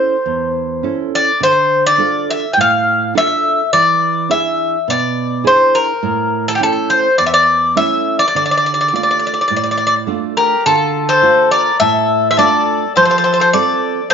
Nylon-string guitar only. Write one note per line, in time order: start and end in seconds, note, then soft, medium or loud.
0.00 0.15 C#4 soft
0.00 0.15 E4 soft
0.00 0.15 A4 soft
0.26 0.82 E2 medium
0.83 1.30 C#4 soft
0.83 1.30 E4 soft
0.83 1.30 A4 soft
1.40 1.97 D3 medium
1.98 2.45 D4 soft
1.98 2.45 F4 soft
1.98 2.46 A4 soft
2.57 3.13 A2 medium
3.15 3.61 D4 soft
3.15 3.61 F4 soft
3.15 3.61 A4 medium
3.73 4.29 E3 medium
4.29 4.76 D4 soft
4.29 4.76 E4 soft
4.29 4.76 G#4 soft
4.88 5.44 B2 medium
5.44 5.91 D4 soft
5.44 5.91 E4 soft
5.44 5.91 G#4 medium
6.03 6.59 A2 medium
6.60 7.07 A3 soft
6.60 7.07 C#4 soft
6.60 7.07 E4 soft
7.19 7.75 E2 medium
7.76 8.22 A3 soft
7.76 8.23 C#4 soft
7.76 8.23 E4 soft
8.35 8.91 D3 medium
8.93 9.39 A3 soft
8.93 9.39 D4 soft
8.93 9.39 F4 soft
9.50 10.06 A2 medium
10.07 10.54 A3 soft
10.07 10.54 D4 soft
10.07 10.54 F4 soft
10.66 11.22 D3 medium
11.22 11.69 A3 soft
11.22 11.69 D4 soft
11.22 11.69 F4 soft
11.80 12.37 A2 medium
12.38 12.84 A3 medium
12.38 12.85 D4 soft
12.38 12.85 F4 medium
12.97 13.53 F3 medium
13.53 14.00 C4 soft
13.53 14.00 F4 soft
13.53 14.00 A4 medium